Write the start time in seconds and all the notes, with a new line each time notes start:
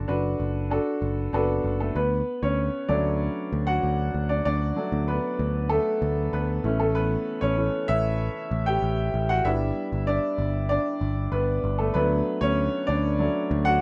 Already playing: D4 F#4 A4
0.08 F#1 D4 F#4 B4
0.40 F#1
0.70 D4 F#4 A4
1.02 F#1
1.33 F#1 B3 D4 F#4 A4 B4
1.64 F#1
1.80 A3 A4
1.95 D2 B3 B4
2.43 D2 C#4 C#5
2.88 D2 F#3 A3 D4 D5
3.53 D2
3.67 F#4 F#5
3.83 D2
4.14 D2
4.29 D4 D5
4.45 D2 D4 D5
4.76 F#3 A3 D4
4.92 D2
5.08 B3 B4
5.39 D2
5.69 A3 A4
6.02 D2
6.33 D2 B3 B4
6.64 A1 E3 A3 C#4
6.80 A3 A4
6.95 B3 B4
7.41 A1 C#4 C#5
7.57 E3 A3 C#4
7.88 A1 E4 E5
8.51 A1
8.66 G4 G5
8.82 A1
9.14 A1
9.29 F#4 F#5
9.45 G1 G3 B3 D4 E4 E5
9.93 G1
10.07 D4 D5
10.38 G1
10.69 D4 D5
11.01 G1
11.32 G1 B3 B4
11.64 G1
11.79 A3 A4
11.94 D2 F#3 A3 B3 D4 B4
12.41 D2 C#4 C#5
12.87 D2 D4 D5
13.19 F#3 A3 D4
13.51 D2
13.65 F#4 F#5